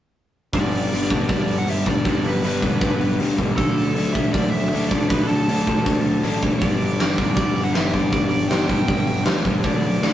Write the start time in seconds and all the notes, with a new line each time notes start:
0.53 G1 G2 D3 G3 B3 D4 D5, kick, open hi-hat
0.73 open hi-hat
0.92 G1 G2 D3 G3 B3 D4, open hi-hat
1.10 G2 D3 G3 B3 D4, kick, open hi-hat
1.29 D2 G2 D3 G3 B3 D4 D5, kick, open hi-hat
1.48 G1, open hi-hat
1.58 F#5
1.67 G1 G2 D3 G3 B3 D4 E5, open hi-hat
1.86 G2 D3 G3 B3 D4 D5, kick, open hi-hat
2.05 G1 G2 D3 G3 B3 D4 D5, kick, open hi-hat
2.24 G1 B4, open hi-hat
2.43 G1 G2 D3 G3 B3 D4 B4, open hi-hat
2.62 G2 D3 G3 B3 D4, kick, open hi-hat
2.81 G1 G2 D3 G3 B3 D4, kick, open hi-hat
3.01 G1, open hi-hat
3.20 D2 G2 D3 G3 B3 D4, open hi-hat
3.38 G1 G2 D3 G3 B3 D4, kick, open hi-hat
3.57 D2 D3 F#3 A3 D4 A4, kick, open hi-hat
3.78 open hi-hat
3.96 D2 D3 F#3 A3 D4, open hi-hat
4.13 D3 F#3 A3 D4 E5, kick, open hi-hat
4.33 A2 D3 F#3 A3 D4 D5, kick, open hi-hat
4.50 D2 E5, open hi-hat
4.69 D3 F#3 E5, open hi-hat
4.73 D2 A3 D4
4.89 D3 F#3 A3 D5, kick, open hi-hat
4.93 D4
5.09 D2 D3 F#3 A3 D4 B4, kick, open hi-hat
5.27 D2 A4, open hi-hat
5.48 D2 D3 F#3 A3 D4, open hi-hat
5.67 D3 F#3 A3 D4, kick, open hi-hat
5.85 D2 D3 F#3 A3 D4, kick, open hi-hat
6.05 D2, open hi-hat
6.23 A1 D3 F#3 A3 D4, open hi-hat
6.43 D2 D3 F#3 A3 D4, kick, open hi-hat
6.59 G1 G2 D3 G3 D5, kick, open hi-hat
6.63 B3 D4
6.81 open hi-hat
7.00 G1 G2 D3 G3 B3 D4, snare, open hi-hat
7.18 G2 D3 G3 B3 D4, kick, open hi-hat
7.35 D2 G2 D3 G3 B3 D4 D5, kick, open hi-hat
7.56 G1, open hi-hat
7.64 F#5
7.73 G1 G2 D3 G3 B3 D4 E5, snare, open hi-hat
7.93 G2 D3 G3 B3 D4 D5, kick, open hi-hat
8.12 G1 G2 D3 G3 B3 D4 D5, kick, open hi-hat
8.30 G1 D5, open hi-hat
8.48 G2 D3 G3 B3 D4 G5, snare, open hi-hat
8.52 G1
8.68 G2 D3 G3 B3 D4, kick, open hi-hat
8.88 G1 G2 D3 G3 B3 D4, kick, open hi-hat
9.07 G1, open hi-hat
9.25 D2 G2 D3 G3 B3 D4, snare, open hi-hat
9.44 G1 G2 D3 G3 B3 D4, kick, open hi-hat
9.63 D2 D3 F#3 A3 D4 D5, kick, open hi-hat
9.84 open hi-hat
10.02 D2 D3 F#3 A3 D4, snare, open hi-hat